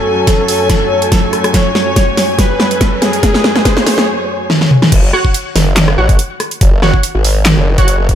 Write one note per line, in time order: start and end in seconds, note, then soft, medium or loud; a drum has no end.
0.00 4.88 F#2 medium
0.00 4.88 F#3 medium
0.00 4.88 A3 medium
0.00 4.88 C#4 medium
0.00 4.08 F#4 medium
0.00 1.46 A4 loud
0.00 4.08 C#5 medium
0.00 4.88 G#5 medium
0.00 riser medium
0.27 kick medium
0.27 snare medium
0.27 closed hi-hat medium
0.48 open hi-hat medium
0.70 kick medium
0.70 snare medium
0.70 closed hi-hat medium
1.02 closed hi-hat medium
1.12 kick medium
1.12 snare medium
1.12 closed hi-hat medium
1.33 cross-stick soft
1.33 closed hi-hat medium
1.44 cross-stick medium
1.44 closed hi-hat medium
1.54 2.31 C#5 loud
1.54 kick medium
1.54 snare medium
1.54 closed hi-hat medium
1.75 snare medium
1.96 kick loud
1.96 snare medium
1.96 closed hi-hat medium
2.17 snare medium
2.17 open hi-hat medium
2.39 2.94 B4 loud
2.39 kick loud
2.39 snare medium
2.39 closed hi-hat medium
2.60 snare medium
2.71 closed hi-hat medium
2.81 kick medium
2.81 snare medium
2.81 closed hi-hat medium
3.02 4.08 G#4 loud
3.02 snare medium
3.02 closed hi-hat medium
3.13 closed hi-hat medium
3.23 kick loud
3.23 snare medium
3.23 closed hi-hat medium
3.34 snare medium
3.44 snare medium
3.56 snare medium
3.65 kick medium
3.65 snare medium
3.65 closed hi-hat medium
3.77 snare medium
3.86 snare loud
3.86 open hi-hat medium
3.98 snare medium
4.50 snare medium
4.61 snare medium
4.71 mid tom medium
4.82 snare medium
4.92 5.12 F#1 loud
4.92 kick loud
4.92 closed hi-hat medium
4.92 crash loud
5.13 5.31 F#4 medium
5.13 5.31 C#5 medium
5.13 5.31 F#5 loud
5.13 cross-stick medium
5.25 kick medium
5.34 closed hi-hat medium
5.56 5.96 F#1 medium
5.56 snare medium
5.56 open hi-hat medium
5.77 snare loud
5.77 clap loud
5.77 closed hi-hat medium
5.88 cross-stick medium
5.98 6.17 A1 loud
5.98 6.16 F#4 medium
5.98 6.16 C#5 medium
5.98 6.16 F#5 medium
6.09 kick loud
6.09 closed hi-hat medium
6.19 closed hi-hat medium
6.40 cross-stick medium
6.40 closed hi-hat medium
6.51 closed hi-hat medium
6.61 6.92 F#1 loud
6.61 kick loud
6.61 closed hi-hat medium
6.82 7.00 F#4 medium
6.82 7.00 C#5 medium
6.82 7.00 F#5 medium
6.82 cross-stick soft
6.82 snare medium
6.94 kick medium
7.03 closed hi-hat medium
7.15 7.55 G#1 medium
7.25 open hi-hat medium
7.46 snare loud
7.46 clap medium
7.46 closed hi-hat medium
7.57 8.15 F#1 loud
7.78 7.95 F#4 medium
7.78 7.95 C#5 medium
7.78 7.95 F#5 medium
7.78 kick loud
7.78 closed hi-hat medium
7.88 closed hi-hat medium
8.09 kick medium
8.09 closed hi-hat medium